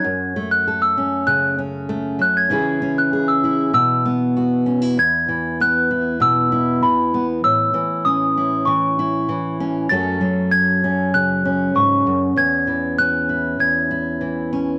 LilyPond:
<<
  \new Staff \with { instrumentName = "Celesta" } { \time 4/4 \key e \major \tempo 4 = 97 gis'''8. fis'''8 e'''8. fis'''8 r4 fis'''16 gis'''16~ | gis'''8. fis'''8 e'''8. e'''8 r4. | gis'''4 fis'''4 e'''4 b''8. r16 | e'''4 dis'''4 cis'''4. r8 |
a'''4 gis'''4 fis'''4 cis'''8. r16 | gis'''4 fis'''4 gis'''4. r8 | }
  \new Staff \with { instrumentName = "Steel-string acoustic guitar" } { \time 4/4 \key e \major << { fis'8 a8 a'8 cis'4 cis'8 a4 | <e cis' e' gis'>8 cis'8 gis'8 e'8 r8 b8 fis'8 cis'16 e'16 | r4 b8 e'4 e'4 b8 | r4 cis'8 e'4 e'4 cis'8 |
<fis a cis' a'>4. cis'4 cis'4.~ | cis'4 cis'8 e'4 e'4 cis'8 | } \\ { fis,2 cis4. fis8 | cis2 b,2 | e,8 e4. b,4 e4 | a,8 e4. e4 e4 |
fis,8 fis4. cis4 gis,8 fis,8 | e,8 e4. e,4 e4 | } >> }
>>